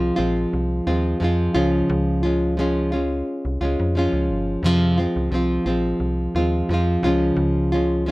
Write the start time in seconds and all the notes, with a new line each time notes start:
Already playing: C2 F3 G#3 C4 F4
0.16 A#1 F3 G#3 C4 F4
0.53 C2
0.87 D#2 F3 G#3 C4 F4
1.20 F2 F3 G#3 C4
1.24 F4
1.55 C#2 C#3 F3 G#3 C#4 F4
1.89 C#2
2.23 G#3 C#4 F4
2.57 F3 G#3 C#4 F4
2.92 G#3 C#4 F4
3.45 C2
3.61 C#2 G#3 C#4 F4
3.80 F2
3.95 F3 G#3 C#4 F4
4.13 C#2
4.29 G1
4.63 F2 C3 F3 G#3 C4 F4
4.98 F3 G#3 C4 F4
5.16 C#2
5.31 C2 F3 G#3 C4
5.35 F4
5.65 A#1 F3 G#3 C4 F4
6.00 C2
6.35 D#2 G#3 C4 F4
6.40 F3
6.69 F2 F3 G#3 C4
6.74 F4
7.03 C#2 C#3 F3 G#3 C#4 F4
7.36 C#2
7.72 G#3 C#4 F4
8.06 F3 G#3